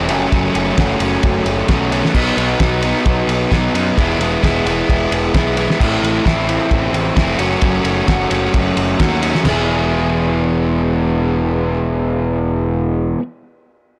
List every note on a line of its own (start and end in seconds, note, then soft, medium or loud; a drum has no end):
0.09 0.26 F#1 medium
0.09 0.31 F#2 medium
0.09 0.32 C#3 medium
0.09 0.33 F#3 medium
0.09 0.33 A3 medium
0.09 0.33 C#4 loud
0.09 ride medium
0.32 0.48 F#1 loud
0.32 0.76 F#2 medium
0.32 0.77 C#3 medium
0.32 0.56 F#3 medium
0.32 0.54 A3 loud
0.32 0.53 C#4 loud
0.32 kick loud
0.32 ride loud
0.54 0.71 F#1 medium
0.54 0.78 F#3 medium
0.54 0.78 A3 medium
0.54 0.79 C#4 medium
0.54 ride medium
0.77 0.94 F#1 medium
0.77 1.23 F#2 loud
0.77 1.23 C#3 loud
0.77 1.03 F#3 loud
0.77 1.01 A3 loud
0.77 0.99 C#4 loud
0.77 1.67 F#4 medium
0.77 kick loud
0.77 snare loud
0.77 ride loud
1.00 1.16 F#1 medium
1.00 1.69 F#3 medium
1.00 1.70 A3 medium
1.00 1.71 C#4 medium
1.00 ride medium
1.23 1.40 F#1 medium
1.23 2.14 F#3 medium
1.23 kick loud
1.23 ride loud
1.45 1.62 F#1 medium
1.45 2.14 A3 medium
1.45 ride medium
1.68 2.01 B1 loud
1.68 2.13 C#3 medium
1.68 1.94 F#3 medium
1.68 1.93 A3 medium
1.68 1.91 C#4 medium
1.68 2.14 F#4 medium
1.68 kick loud
1.68 snare loud
1.68 ride loud
1.92 2.13 F#3 medium
1.92 2.14 A3 medium
1.92 2.13 C#4 medium
1.92 ride medium
2.05 snare medium
2.14 2.31 B1 loud
2.14 2.59 B2 medium
2.14 2.39 F#3 loud
2.14 2.38 B3 loud
2.14 2.36 D#4 loud
2.14 kick loud
2.14 crash loud
2.37 2.53 B1 loud
2.37 2.60 F#3 medium
2.37 2.61 B3 medium
2.37 2.62 D#4 medium
2.37 ride medium
2.59 2.92 B1 medium
2.59 3.06 B2 loud
2.59 2.85 F#3 medium
2.59 2.84 B3 loud
2.59 2.82 D#4 loud
2.59 3.51 F#4 medium
2.59 kick loud
2.59 snare loud
2.59 ride loud
2.83 3.51 F#3 medium
2.83 3.52 B3 medium
2.83 3.53 D#4 medium
2.83 ride medium
3.05 3.22 B1 loud
3.05 3.97 F#3 medium
3.05 kick loud
3.05 ride loud
3.27 3.44 B1 medium
3.27 3.97 B3 medium
3.27 ride medium
3.51 3.68 B1 medium
3.51 3.96 B2 medium
3.51 3.76 F#3 medium
3.51 3.75 B3 medium
3.51 3.73 D#4 medium
3.51 3.97 F#4 medium
3.51 kick loud
3.51 snare loud
3.51 ride loud
3.74 3.90 F#2 medium
3.74 3.97 F#3 medium
3.74 3.97 B3 medium
3.74 3.96 D#4 medium
3.74 ride medium
3.97 4.14 E1 medium
3.97 5.11 E2 medium
3.97 4.42 E3 medium
3.97 4.21 G#3 loud
3.97 4.21 B3 loud
3.97 4.20 E4 loud
3.97 kick loud
3.97 ride loud
4.19 4.35 E1 medium
4.19 4.43 G#3 medium
4.19 4.44 B3 medium
4.19 4.45 E4 medium
4.19 ride medium
4.43 4.59 E1 medium
4.43 4.89 E3 medium
4.43 4.68 G#3 loud
4.43 4.67 B3 loud
4.43 4.65 E4 loud
4.43 kick loud
4.43 snare loud
4.43 ride loud
4.65 4.82 E1 loud
4.65 5.35 B3 medium
4.65 5.36 E4 medium
4.65 ride medium
4.69 5.34 G#3 medium
4.89 5.05 E1 loud
4.89 5.80 E3 medium
4.89 kick loud
4.89 ride loud
5.12 5.28 E1 loud
5.12 5.80 G#3 medium
5.12 ride medium
5.34 5.67 B1 loud
5.34 5.79 E3 medium
5.34 5.58 G#3 medium
5.34 5.57 B3 medium
5.34 5.56 E4 medium
5.34 kick loud
5.34 snare loud
5.34 ride loud
5.57 5.80 G#3 medium
5.57 5.79 B3 medium
5.57 5.78 E4 medium
5.57 ride medium
5.70 snare medium
5.80 5.96 A1 loud
5.80 6.23 A2 loud
5.80 6.24 E3 medium
5.80 6.04 A3 loud
5.80 6.02 C4 loud
5.80 6.01 E4 loud
5.80 kick loud
5.80 crash loud
6.02 6.19 A1 medium
6.02 6.26 A3 medium
6.02 6.25 C4 medium
6.02 6.26 E4 medium
6.02 ride medium
6.24 6.58 A1 loud
6.24 6.71 A2 medium
6.24 6.71 E3 loud
6.24 6.50 A3 loud
6.24 6.48 C4 loud
6.24 6.46 E4 loud
6.24 kick loud
6.24 snare loud
6.24 ride medium
6.48 7.15 A3 medium
6.48 7.16 C4 medium
6.48 7.17 E4 medium
6.48 ride medium
6.71 6.88 A1 loud
6.71 7.40 E3 medium
6.71 kick loud
6.71 ride loud
6.93 7.09 A1 medium
6.93 7.40 A3 medium
6.93 ride medium
7.16 7.33 F1 loud
7.16 7.38 E3 medium
7.16 7.38 A3 medium
7.16 7.39 C4 medium
7.16 7.38 E4 medium
7.16 kick loud
7.16 snare loud
7.16 ride loud
7.39 7.55 F#1 medium
7.39 7.61 F#2 medium
7.39 7.61 F#3 medium
7.39 7.62 A3 medium
7.39 7.63 C#4 medium
7.39 7.63 F#4 medium
7.39 ride medium
7.61 7.79 F#1 loud
7.61 8.77 F#2 medium
7.61 8.06 F#3 loud
7.61 7.85 A3 medium
7.61 7.85 C#4 medium
7.61 7.83 F#4 loud
7.61 kick loud
7.61 ride loud
7.84 8.01 F#1 medium
7.84 8.07 A3 medium
7.84 8.08 C#4 medium
7.84 8.09 F#4 medium
7.84 ride medium
8.07 8.25 F#1 medium
8.07 8.53 F#3 loud
8.07 8.32 A3 loud
8.07 8.30 C#4 medium
8.07 8.29 F#4 loud
8.07 kick loud
8.07 snare loud
8.07 ride loud
8.30 8.47 F#1 medium
8.30 8.99 A3 medium
8.30 9.00 C#4 medium
8.30 9.00 F#4 medium
8.30 ride medium
8.53 8.70 F#1 medium
8.53 9.45 F#3 medium
8.53 kick loud
8.53 ride loud
8.76 8.93 F#1 medium
8.76 9.45 A3 medium
8.76 ride medium
8.99 9.32 D#2 loud
8.99 9.44 F#3 medium
8.99 9.23 A3 medium
8.99 9.22 C#4 medium
8.99 9.21 F#4 medium
8.99 kick loud
8.99 snare loud
8.99 ride loud
9.22 9.45 A3 medium
9.22 9.44 C#4 medium
9.22 9.44 F#4 medium
9.22 ride medium
9.35 snare medium
9.44 13.15 E1 loud
9.44 13.17 E2 medium
9.44 13.18 B2 loud
9.44 13.18 E3 medium
9.44 13.19 G#3 loud
9.44 13.20 B3 loud
9.44 snare loud
9.44 floor tom loud
9.44 crash medium
9.48 13.21 E4 loud
9.48 13.22 G#4 loud